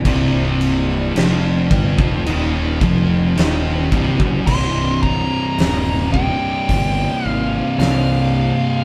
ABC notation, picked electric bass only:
X:1
M:4/4
L:1/16
Q:1/4=54
K:Cm
V:1 name="Picked electric bass" clef=bass
C,,,4 F,,,2 G,,, F,,, E,,,2 F,,,2 E,,,2 C,,, ^F,,, | C,,,4 E,,,4 G,,,2 A,,,2 C,,4 |]